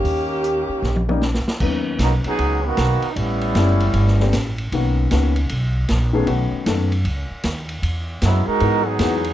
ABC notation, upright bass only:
X:1
M:4/4
L:1/8
Q:"Swing" 1/4=154
K:Eb
V:1 name="Upright bass" clef=bass
E,,3 z B,,,3 z | [K:G#m] D,,2 B,,, z C,,2 B,,, z | =A,,,2 F,,,2 =G,,,2 A,,,2 | B,,,2 C,,2 B,,,2 A,,,2 |
B,,, z F,,2 C,, z D,,2 | E,,2 F,, z G,,2 E,,2 |]